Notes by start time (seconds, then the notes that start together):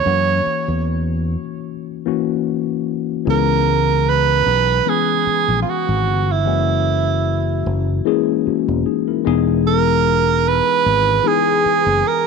Already playing: C#5
0.04 F#2 E3 A#3 C#4 F#4
0.46 muted fingered electric bass stroke
0.68 E2
2.05 E3 A#3 C#4 F#4
3.25 C#2 E3 G#3 B3 C#4 G#4
3.30 A#4
4.09 B4
4.46 B1
4.86 E3 G#3 B3 C#4 G#4 B4
5.27 muted fingered electric bass stroke
5.48 A#1
5.62 F4
5.69 F#4
5.89 G#1
6.07 G1
6.32 E4
6.45 F#1 E3 G#3 A#3 C#4 F#4
7.66 F#1
8.05 E3 G#3 A#3 C#4 G#4
8.47 C#4 F#4, muted fingered electric bass stroke
8.68 E1
8.86 D#4 G#4
9.08 E4 A#4
9.24 E1 E3 G#3 B3 D#4 G#4
9.67 A#4
10.48 B4
10.86 G#1
11.23 E3 G#3 B3 D#4 G#4
11.66 muted fingered electric bass stroke
11.86 F#1
12.07 A#4